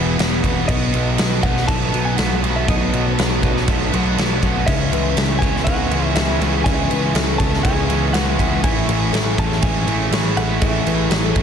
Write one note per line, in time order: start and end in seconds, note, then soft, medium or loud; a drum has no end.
0.00 0.16 E1 medium
0.00 0.16 E2 medium
0.00 0.17 B2 medium
0.00 0.19 B2 medium
0.00 0.16 E3 medium
0.00 0.42 E3 medium
0.00 0.69 E3 medium
0.00 0.17 B3 medium
0.00 0.19 B3 medium
0.00 0.68 E4 medium
0.00 0.69 E4 medium
0.00 1.41 F#4 medium
0.00 8.60 B4 medium
0.00 0.65 E5 medium
0.00 4.63 F#5 medium
0.00 4.63 D#6 medium
0.17 0.41 E1 loud
0.17 0.67 E2 medium
0.17 0.66 B2 medium
0.17 0.68 E3 medium
0.17 1.17 B3 medium
0.17 1.68 B3 medium
0.17 snare loud
0.17 crash medium
0.43 0.66 E1 loud
0.43 0.68 E3 medium
0.43 2.44 F#4 medium
0.43 kick medium
0.43 crash medium
0.67 0.91 B1 loud
0.67 1.91 B2 loud
0.67 1.93 B2 medium
0.67 1.94 B2 medium
0.67 1.92 F#3 loud
0.67 1.91 B3 loud
0.67 1.45 D#5 loud
0.67 4.64 A5 medium
0.67 kick loud
0.67 crash loud
0.93 1.16 B1 loud
0.93 1.92 F#3 medium
0.93 1.18 F#3 medium
0.93 crash medium
1.17 1.41 B1 medium
1.17 1.93 F#3 medium
1.17 2.16 A3 medium
1.17 snare loud
1.17 crash loud
1.42 1.66 B1 medium
1.42 2.69 D#4 medium
1.42 2.67 F#4 medium
1.42 1.67 F#5 medium
1.42 kick medium
1.42 crash medium
1.57 snare soft
1.67 1.91 B1 medium
1.67 2.18 A3 medium
1.67 2.92 D#4 medium
1.67 2.05 A5 loud
1.67 kick loud
1.67 crash medium
1.92 2.16 B1 medium
1.92 2.16 B2 medium
1.92 2.17 F#3 medium
1.92 2.41 F#3 medium
1.92 2.92 F#3 medium
1.92 2.20 B3 medium
1.92 crash medium
2.05 2.17 G#5 loud
2.17 2.41 B1 loud
2.17 2.66 B2 medium
2.17 2.67 F#3 medium
2.17 3.15 A3 medium
2.17 3.43 A3 medium
2.17 2.69 B3 loud
2.17 2.56 F#5 loud
2.17 snare loud
2.17 crash medium
2.43 2.65 B1 medium
2.43 2.91 F#3 medium
2.43 3.68 F#4 medium
2.43 crash medium
2.56 2.69 E5 medium
2.67 2.91 B1 medium
2.67 3.92 B2 medium
2.67 3.91 B2 medium
2.67 3.93 B2 medium
2.67 3.91 F#3 loud
2.67 3.91 B3 loud
2.67 3.15 D#5 medium
2.67 kick loud
2.67 crash medium
2.92 3.15 B1 medium
2.92 3.91 F#3 medium
2.92 3.18 F#3 medium
2.92 crash medium
3.17 3.41 B1 loud
3.17 3.92 F#3 medium
3.17 4.16 A3 medium
3.17 snare loud
3.17 crash medium
3.42 3.65 B1 medium
3.42 4.67 D#4 medium
3.42 4.67 F#4 medium
3.42 kick medium
3.42 crash medium
3.57 snare soft
3.67 3.90 B1 loud
3.67 4.16 A3 medium
3.67 4.67 D#4 medium
3.67 kick loud
3.67 crash medium
3.92 4.15 B1 medium
3.92 4.17 B2 medium
3.92 4.40 F#3 medium
3.92 4.67 F#3 medium
3.92 4.16 F#3 medium
3.92 4.20 B3 medium
3.92 crash medium
4.17 4.40 B1 loud
4.17 4.66 B2 medium
4.17 4.66 F#3 medium
4.17 4.67 A3 medium
4.17 4.69 B3 medium
4.17 snare loud
4.17 crash medium
4.41 4.64 B1 medium
4.41 4.67 F#3 medium
4.41 4.67 F#4 medium
4.41 kick medium
4.41 crash medium
4.66 4.89 C#2 medium
4.66 5.90 C#3 medium
4.66 5.89 C#3 loud
4.66 5.91 C#3 medium
4.66 5.92 G#3 loud
4.66 5.90 C#4 loud
4.66 5.37 E5 medium
4.66 11.43 E5 medium
4.66 8.59 G#5 medium
4.66 11.43 C#6 medium
4.66 kick loud
4.66 crash medium
4.92 5.14 C#2 loud
4.92 5.91 E3 medium
4.92 5.17 E3 medium
4.92 5.16 B4 medium
4.92 crash medium
5.16 5.39 C#2 medium
5.16 5.91 E3 medium
5.16 6.15 G#3 medium
5.16 5.41 A4 medium
5.16 snare loud
5.16 crash medium
5.39 5.64 C#2 medium
5.39 6.65 B3 medium
5.39 7.38 E4 medium
5.39 5.91 G#4 medium
5.39 5.64 G#5 medium
5.39 kick medium
5.43 crash medium
5.56 snare soft
5.64 5.88 C#2 loud
5.64 6.15 G#3 medium
5.64 6.90 B3 medium
5.64 6.16 F#5 medium
5.64 kick loud
5.64 crash medium
5.91 6.13 C#2 medium
5.91 6.15 C#3 medium
5.91 6.90 E3 medium
5.91 6.39 E3 medium
5.91 6.17 G#3 medium
5.91 6.18 C#4 medium
5.91 6.41 G#4 medium
5.91 crash medium
6.15 6.38 C#2 medium
6.15 6.63 C#3 medium
6.15 7.64 G#3 medium
6.15 7.14 G#3 medium
6.15 6.66 G#3 medium
6.15 6.67 C#4 medium
6.15 6.41 B4 medium
6.15 6.67 E5 medium
6.15 snare loud
6.15 crash medium
6.40 6.62 C#2 medium
6.40 6.90 E3 medium
6.40 8.38 E4 medium
6.40 6.90 G#4 medium
6.40 crash medium
6.64 6.88 C#2 medium
6.64 7.87 C#3 loud
6.64 7.89 C#3 medium
6.64 7.89 G#3 loud
6.64 7.88 C#4 loud
6.64 7.38 G#5 loud
6.64 kick loud
6.64 crash medium
6.90 7.12 C#2 loud
6.90 7.15 E3 medium
6.90 7.89 E3 medium
6.90 7.15 B4 medium
6.90 crash medium
7.14 7.36 C#2 loud
7.14 7.89 E3 medium
7.14 8.13 G#3 medium
7.14 7.40 A4 medium
7.14 snare loud
7.14 crash medium
7.38 7.62 C#2 medium
7.38 8.63 B3 medium
7.38 9.36 E4 medium
7.38 7.91 G#4 medium
7.38 7.63 A5 loud
7.38 kick medium
7.38 crash medium
7.54 snare soft
7.63 7.86 C#2 loud
7.63 8.14 G#3 medium
7.63 8.63 B3 medium
7.63 8.13 G#5 loud
7.63 kick loud
7.63 crash medium
7.89 8.11 C#2 medium
7.89 8.13 C#3 medium
7.89 8.37 E3 medium
7.89 8.88 E3 medium
7.89 8.15 G#3 medium
7.89 8.16 C#4 medium
7.89 8.40 G#4 medium
7.89 crash medium
8.13 8.36 C#2 loud
8.13 8.62 C#3 medium
8.13 8.66 G#3 medium
8.13 8.64 G#3 medium
8.13 9.87 C#4 medium
8.13 8.39 B4 medium
8.13 8.63 F#5 loud
8.13 snare loud
8.13 crash medium
8.38 8.64 C#2 medium
8.38 8.87 E3 medium
8.38 10.37 E4 medium
8.38 9.13 G#4 medium
8.38 kick medium
8.38 crash medium
8.62 8.86 A1 loud
8.62 9.85 A2 medium
8.62 9.87 A2 medium
8.62 9.88 E3 loud
8.62 11.43 G#4 medium
8.62 9.34 G#5 loud
8.62 11.43 G#5 medium
8.62 kick loud
8.62 crash medium
8.88 9.10 A1 medium
8.88 9.87 E3 medium
8.88 9.13 E3 medium
8.88 9.13 B4 medium
8.88 crash medium
9.12 9.34 A1 medium
9.12 9.88 E3 medium
9.12 10.10 G#3 medium
9.12 9.39 A4 medium
9.12 snare loud
9.12 crash medium
9.37 9.60 A1 medium
9.37 10.62 C#4 medium
9.37 11.34 E4 medium
9.37 9.86 G#4 medium
9.37 9.62 A5 loud
9.37 kick medium
9.37 crash medium
9.52 snare soft
9.62 9.84 A1 loud
9.62 10.11 G#3 medium
9.62 10.86 C#4 medium
9.62 10.08 G#5 medium
9.62 kick loud
9.62 crash medium
9.87 10.09 A1 medium
9.87 10.10 A2 medium
9.87 10.35 E3 medium
9.87 10.85 E3 medium
9.87 10.13 E3 medium
9.87 10.10 A3 medium
9.87 10.12 G#4 medium
9.87 crash medium
10.11 10.33 A1 medium
10.11 10.59 A2 medium
10.11 10.62 E3 medium
10.11 11.09 G#3 medium
10.11 11.36 G#3 medium
10.11 10.37 C#5 medium
10.11 snare loud
10.11 crash medium
10.36 10.58 A1 loud
10.36 10.83 E3 medium
10.36 11.43 E4 medium
10.36 10.62 A4 medium
10.36 10.62 F#5 loud
10.36 crash medium
10.60 10.84 A1 medium
10.60 11.43 A2 medium
10.60 11.43 A2 loud
10.60 11.43 A2 medium
10.60 11.43 E3 loud
10.60 11.43 E5 loud
10.60 kick loud
10.60 crash medium
10.84 11.08 A1 loud
10.84 11.43 E3 medium
10.84 11.10 E3 medium
10.84 11.11 B4 medium
10.84 crash medium
11.10 11.32 A1 medium
11.10 11.43 E3 medium
11.10 11.43 G#3 medium
11.10 11.36 A4 medium
11.10 snare loud
11.10 crash medium
11.35 11.43 A1 medium
11.35 11.43 C#4 medium
11.35 11.43 E4 medium
11.35 11.43 G#4 medium
11.35 kick medium
11.35 crash medium